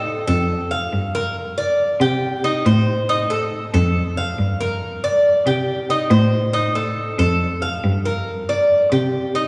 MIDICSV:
0, 0, Header, 1, 3, 480
1, 0, Start_track
1, 0, Key_signature, -2, "minor"
1, 0, Tempo, 431965
1, 1511, Time_signature, 4, 2, 24, 8
1, 10530, End_track
2, 0, Start_track
2, 0, Title_t, "Cuban tres"
2, 0, Program_c, 0, 25
2, 0, Note_on_c, 0, 69, 75
2, 294, Note_off_c, 0, 69, 0
2, 306, Note_on_c, 0, 69, 89
2, 774, Note_off_c, 0, 69, 0
2, 788, Note_on_c, 0, 77, 73
2, 1255, Note_off_c, 0, 77, 0
2, 1276, Note_on_c, 0, 70, 78
2, 1507, Note_off_c, 0, 70, 0
2, 1752, Note_on_c, 0, 74, 77
2, 2218, Note_off_c, 0, 74, 0
2, 2235, Note_on_c, 0, 67, 83
2, 2699, Note_off_c, 0, 67, 0
2, 2713, Note_on_c, 0, 63, 85
2, 2945, Note_off_c, 0, 63, 0
2, 2955, Note_on_c, 0, 72, 74
2, 3420, Note_off_c, 0, 72, 0
2, 3435, Note_on_c, 0, 63, 87
2, 3666, Note_off_c, 0, 63, 0
2, 3668, Note_on_c, 0, 69, 79
2, 4136, Note_off_c, 0, 69, 0
2, 4154, Note_on_c, 0, 69, 73
2, 4619, Note_off_c, 0, 69, 0
2, 4638, Note_on_c, 0, 77, 76
2, 5101, Note_off_c, 0, 77, 0
2, 5118, Note_on_c, 0, 70, 76
2, 5581, Note_off_c, 0, 70, 0
2, 5598, Note_on_c, 0, 74, 82
2, 6061, Note_off_c, 0, 74, 0
2, 6074, Note_on_c, 0, 67, 77
2, 6539, Note_off_c, 0, 67, 0
2, 6557, Note_on_c, 0, 63, 82
2, 6785, Note_on_c, 0, 72, 69
2, 6787, Note_off_c, 0, 63, 0
2, 7254, Note_off_c, 0, 72, 0
2, 7261, Note_on_c, 0, 63, 87
2, 7499, Note_off_c, 0, 63, 0
2, 7504, Note_on_c, 0, 69, 75
2, 7973, Note_off_c, 0, 69, 0
2, 7988, Note_on_c, 0, 69, 87
2, 8455, Note_off_c, 0, 69, 0
2, 8467, Note_on_c, 0, 77, 71
2, 8934, Note_off_c, 0, 77, 0
2, 8950, Note_on_c, 0, 70, 70
2, 9416, Note_off_c, 0, 70, 0
2, 9434, Note_on_c, 0, 74, 75
2, 9898, Note_off_c, 0, 74, 0
2, 9910, Note_on_c, 0, 67, 73
2, 10376, Note_off_c, 0, 67, 0
2, 10390, Note_on_c, 0, 63, 79
2, 10530, Note_off_c, 0, 63, 0
2, 10530, End_track
3, 0, Start_track
3, 0, Title_t, "Cello"
3, 0, Program_c, 1, 42
3, 0, Note_on_c, 1, 45, 86
3, 238, Note_off_c, 1, 45, 0
3, 308, Note_on_c, 1, 41, 88
3, 986, Note_off_c, 1, 41, 0
3, 1033, Note_on_c, 1, 43, 79
3, 2164, Note_off_c, 1, 43, 0
3, 2224, Note_on_c, 1, 48, 97
3, 2904, Note_off_c, 1, 48, 0
3, 2952, Note_on_c, 1, 45, 87
3, 4084, Note_off_c, 1, 45, 0
3, 4157, Note_on_c, 1, 41, 100
3, 4830, Note_off_c, 1, 41, 0
3, 4874, Note_on_c, 1, 43, 88
3, 6005, Note_off_c, 1, 43, 0
3, 6068, Note_on_c, 1, 48, 80
3, 6746, Note_off_c, 1, 48, 0
3, 6784, Note_on_c, 1, 45, 104
3, 7919, Note_off_c, 1, 45, 0
3, 7987, Note_on_c, 1, 41, 86
3, 8664, Note_off_c, 1, 41, 0
3, 8713, Note_on_c, 1, 43, 89
3, 9843, Note_off_c, 1, 43, 0
3, 9911, Note_on_c, 1, 48, 88
3, 10530, Note_off_c, 1, 48, 0
3, 10530, End_track
0, 0, End_of_file